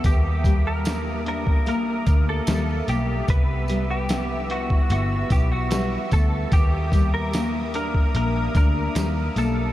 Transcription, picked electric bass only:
0, 0, Header, 1, 2, 480
1, 0, Start_track
1, 0, Tempo, 810263
1, 26, Time_signature, 4, 2, 24, 8
1, 5762, End_track
2, 0, Start_track
2, 0, Title_t, "Picked electric bass"
2, 0, Program_c, 0, 34
2, 25, Note_on_c, 0, 39, 103
2, 987, Note_off_c, 0, 39, 0
2, 987, Note_on_c, 0, 34, 82
2, 1179, Note_off_c, 0, 34, 0
2, 1225, Note_on_c, 0, 38, 88
2, 1417, Note_off_c, 0, 38, 0
2, 1468, Note_on_c, 0, 39, 91
2, 1659, Note_off_c, 0, 39, 0
2, 1707, Note_on_c, 0, 35, 92
2, 1899, Note_off_c, 0, 35, 0
2, 1946, Note_on_c, 0, 36, 108
2, 2882, Note_off_c, 0, 36, 0
2, 2903, Note_on_c, 0, 31, 95
2, 3096, Note_off_c, 0, 31, 0
2, 3143, Note_on_c, 0, 35, 89
2, 3528, Note_off_c, 0, 35, 0
2, 3626, Note_on_c, 0, 38, 95
2, 3818, Note_off_c, 0, 38, 0
2, 3863, Note_on_c, 0, 39, 103
2, 4801, Note_off_c, 0, 39, 0
2, 4825, Note_on_c, 0, 34, 90
2, 5018, Note_off_c, 0, 34, 0
2, 5062, Note_on_c, 0, 38, 99
2, 5256, Note_off_c, 0, 38, 0
2, 5307, Note_on_c, 0, 39, 103
2, 5499, Note_off_c, 0, 39, 0
2, 5546, Note_on_c, 0, 35, 93
2, 5738, Note_off_c, 0, 35, 0
2, 5762, End_track
0, 0, End_of_file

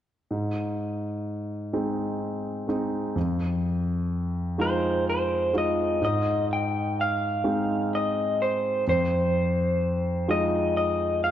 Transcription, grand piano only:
0, 0, Header, 1, 2, 480
1, 0, Start_track
1, 0, Key_signature, -4, "major"
1, 0, Tempo, 949367
1, 152, Time_signature, 6, 3, 24, 8
1, 5718, End_track
2, 0, Start_track
2, 0, Title_t, "Grand piano"
2, 0, Program_c, 0, 0
2, 155, Note_on_c, 0, 44, 35
2, 248, Control_c, 0, 64, 127
2, 875, Note_on_c, 0, 56, 32
2, 877, Note_on_c, 0, 60, 29
2, 877, Note_on_c, 0, 63, 33
2, 1342, Note_off_c, 0, 56, 0
2, 1342, Note_off_c, 0, 60, 0
2, 1343, Note_off_c, 0, 63, 0
2, 1354, Note_on_c, 0, 56, 30
2, 1359, Note_on_c, 0, 60, 30
2, 1360, Note_on_c, 0, 63, 38
2, 1577, Note_off_c, 0, 44, 0
2, 1587, Note_off_c, 0, 56, 0
2, 1590, Note_off_c, 0, 60, 0
2, 1590, Note_off_c, 0, 63, 0
2, 1596, Note_on_c, 0, 41, 43
2, 1603, Control_c, 0, 64, 0
2, 1706, Control_c, 0, 64, 127
2, 2316, Note_on_c, 0, 56, 34
2, 2319, Note_on_c, 0, 63, 33
2, 2320, Note_on_c, 0, 65, 36
2, 2783, Note_off_c, 0, 56, 0
2, 2784, Note_off_c, 0, 63, 0
2, 2785, Note_off_c, 0, 65, 0
2, 2798, Note_on_c, 0, 56, 30
2, 2800, Note_on_c, 0, 63, 29
2, 2803, Note_on_c, 0, 65, 37
2, 3017, Note_off_c, 0, 41, 0
2, 3031, Note_off_c, 0, 56, 0
2, 3032, Note_off_c, 0, 63, 0
2, 3034, Note_off_c, 0, 65, 0
2, 3041, Note_on_c, 0, 44, 45
2, 3044, Control_c, 0, 64, 0
2, 3130, Control_c, 0, 64, 127
2, 3761, Note_on_c, 0, 56, 36
2, 3763, Note_on_c, 0, 60, 34
2, 3765, Note_on_c, 0, 63, 38
2, 4460, Note_off_c, 0, 56, 0
2, 4461, Note_off_c, 0, 44, 0
2, 4461, Note_off_c, 0, 60, 0
2, 4462, Note_off_c, 0, 63, 0
2, 4486, Control_c, 0, 64, 0
2, 4486, Note_on_c, 0, 41, 50
2, 4562, Control_c, 0, 64, 127
2, 5198, Note_on_c, 0, 56, 37
2, 5200, Note_on_c, 0, 63, 37
2, 5201, Note_on_c, 0, 65, 39
2, 5718, Note_off_c, 0, 41, 0
2, 5718, Note_off_c, 0, 56, 0
2, 5718, Note_off_c, 0, 63, 0
2, 5718, Note_off_c, 0, 65, 0
2, 5718, End_track
0, 0, End_of_file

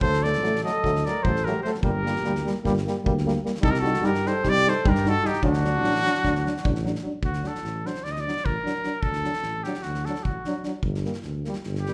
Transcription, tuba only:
0, 0, Header, 1, 2, 480
1, 0, Start_track
1, 0, Tempo, 400802
1, 19, Time_signature, 9, 3, 24, 8
1, 14296, End_track
2, 0, Start_track
2, 0, Title_t, "Tuba"
2, 0, Program_c, 0, 58
2, 0, Note_on_c, 0, 38, 95
2, 499, Note_on_c, 0, 33, 83
2, 517, Note_off_c, 0, 38, 0
2, 772, Note_off_c, 0, 33, 0
2, 1002, Note_on_c, 0, 38, 96
2, 1272, Note_off_c, 0, 38, 0
2, 1483, Note_on_c, 0, 33, 91
2, 1864, Note_off_c, 0, 33, 0
2, 2176, Note_on_c, 0, 31, 92
2, 2675, Note_on_c, 0, 38, 81
2, 2693, Note_off_c, 0, 31, 0
2, 2944, Note_off_c, 0, 38, 0
2, 3157, Note_on_c, 0, 31, 100
2, 3428, Note_off_c, 0, 31, 0
2, 3641, Note_on_c, 0, 38, 97
2, 4023, Note_off_c, 0, 38, 0
2, 4337, Note_on_c, 0, 36, 93
2, 4833, Note_on_c, 0, 43, 82
2, 4851, Note_off_c, 0, 36, 0
2, 5102, Note_off_c, 0, 43, 0
2, 5322, Note_on_c, 0, 36, 91
2, 5591, Note_off_c, 0, 36, 0
2, 5809, Note_on_c, 0, 43, 99
2, 6187, Note_off_c, 0, 43, 0
2, 6487, Note_on_c, 0, 38, 100
2, 6973, Note_on_c, 0, 33, 90
2, 6991, Note_off_c, 0, 38, 0
2, 7247, Note_off_c, 0, 33, 0
2, 7463, Note_on_c, 0, 38, 90
2, 7737, Note_off_c, 0, 38, 0
2, 7966, Note_on_c, 0, 33, 100
2, 8345, Note_off_c, 0, 33, 0
2, 8640, Note_on_c, 0, 38, 90
2, 8915, Note_off_c, 0, 38, 0
2, 9131, Note_on_c, 0, 33, 84
2, 9406, Note_off_c, 0, 33, 0
2, 9628, Note_on_c, 0, 38, 75
2, 9901, Note_off_c, 0, 38, 0
2, 10115, Note_on_c, 0, 33, 89
2, 10255, Note_off_c, 0, 33, 0
2, 10810, Note_on_c, 0, 38, 78
2, 11083, Note_off_c, 0, 38, 0
2, 11287, Note_on_c, 0, 33, 77
2, 11563, Note_off_c, 0, 33, 0
2, 11788, Note_on_c, 0, 38, 77
2, 12062, Note_off_c, 0, 38, 0
2, 12276, Note_on_c, 0, 33, 73
2, 12416, Note_off_c, 0, 33, 0
2, 12963, Note_on_c, 0, 31, 103
2, 13238, Note_off_c, 0, 31, 0
2, 13456, Note_on_c, 0, 38, 79
2, 13730, Note_off_c, 0, 38, 0
2, 13956, Note_on_c, 0, 31, 93
2, 14227, Note_off_c, 0, 31, 0
2, 14296, End_track
0, 0, End_of_file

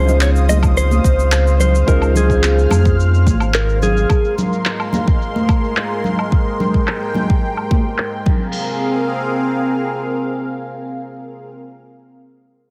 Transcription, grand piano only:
0, 0, Header, 1, 2, 480
1, 0, Start_track
1, 0, Key_signature, -4, "major"
1, 0, Tempo, 555556
1, 1619, Time_signature, 4, 2, 24, 8
1, 10975, End_track
2, 0, Start_track
2, 0, Title_t, "Grand piano"
2, 0, Program_c, 0, 0
2, 0, Control_c, 0, 64, 127
2, 0, Note_on_c, 0, 56, 83
2, 0, Note_on_c, 0, 61, 78
2, 0, Note_on_c, 0, 63, 79
2, 0, Note_on_c, 0, 65, 77
2, 0, Note_on_c, 0, 72, 94
2, 46, Note_off_c, 0, 56, 0
2, 46, Note_on_c, 0, 56, 67
2, 53, Note_off_c, 0, 61, 0
2, 53, Note_on_c, 0, 61, 59
2, 63, Note_off_c, 0, 63, 0
2, 63, Note_on_c, 0, 63, 65
2, 68, Note_off_c, 0, 65, 0
2, 68, Note_on_c, 0, 65, 60
2, 75, Note_off_c, 0, 72, 0
2, 75, Note_on_c, 0, 72, 76
2, 1583, Note_off_c, 0, 56, 0
2, 1586, Note_off_c, 0, 61, 0
2, 1591, Note_off_c, 0, 63, 0
2, 1594, Note_off_c, 0, 65, 0
2, 1597, Note_off_c, 0, 72, 0
2, 1610, Note_on_c, 0, 56, 79
2, 1614, Note_on_c, 0, 61, 78
2, 1617, Note_on_c, 0, 63, 74
2, 1623, Note_on_c, 0, 65, 78
2, 1626, Note_on_c, 0, 72, 94
2, 1949, Note_off_c, 0, 56, 0
2, 1951, Note_off_c, 0, 61, 0
2, 1952, Note_off_c, 0, 63, 0
2, 1955, Note_off_c, 0, 65, 0
2, 1957, Note_off_c, 0, 72, 0
2, 1966, Note_on_c, 0, 56, 65
2, 1975, Note_on_c, 0, 61, 62
2, 1981, Note_on_c, 0, 63, 63
2, 1989, Note_on_c, 0, 65, 61
2, 1997, Note_on_c, 0, 72, 73
2, 3503, Note_off_c, 0, 56, 0
2, 3507, Note_off_c, 0, 61, 0
2, 3510, Note_off_c, 0, 63, 0
2, 3514, Note_off_c, 0, 65, 0
2, 3518, Note_off_c, 0, 72, 0
2, 3552, Control_c, 0, 64, 0
2, 10975, End_track
0, 0, End_of_file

